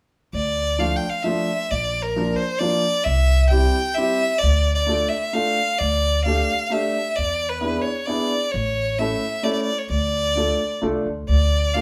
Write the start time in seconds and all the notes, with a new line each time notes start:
0.33 D2 D5
0.78 F3 A3 D4 F4 F5
0.96 G5
1.09 F5
1.23 F3 A3 D4 F4 E5
1.70 A#1 D5
2.03 A#4
2.16 F3 A#3 D4 F4
2.36 C5
2.59 F3 A#3 D4 F4 D5
3.04 C2 E5
3.48 G3 G5
3.52 C4 E4 G4
3.94 G3 C4 E4 E5
3.99 G4
4.39 D5
4.43 D2
4.75 D5
4.86 A3 D4 F4 A4
5.09 E5
5.33 A3 D4 F4 A4 F5
5.78 D2 D5
6.25 A3 D4 G4 A4 F5
6.66 A3 F5
6.71 D4 G4 A4 E5
7.16 E2 D5
7.49 B4
7.61 B3 D4 E4 G#4
7.81 C#5
8.06 B3 D4 E4 G#4 D5
8.51 A1 C#5
8.99 A3 C#4 E4 A4 E5
9.43 A3 C#4 E4 A4 D5
9.53 D5
9.62 D5
9.78 C#5
9.90 D2 D5
10.36 A3 D4 F4 A4
10.81 C2 A3 D4 F4 A4
11.06 D2
11.29 D2 D5
11.74 A3 D4 F4 A4 F5